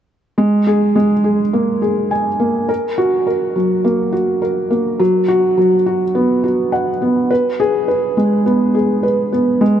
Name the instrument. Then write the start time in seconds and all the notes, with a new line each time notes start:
felt piano
0.38 G#3
0.67 G#4
0.95 G#3
1.24 G#4
1.53 A#3
1.82 G#4
2.11 G#5
2.40 A#3
2.69 A#4
2.98 F#4
3.27 A#4
3.56 F#3
3.84 A#3
4.13 F#4
4.42 A#4
4.70 A#3
4.99 F#3
5.28 F#4
5.57 F#3
5.86 F#4
6.15 B3
6.44 F#4
6.72 F#5
7.02 B3
7.31 B4
7.60 G#4
7.88 B4
8.17 G#3
8.46 B3
8.75 G#4
9.03 B4
9.33 B3
9.61 G#3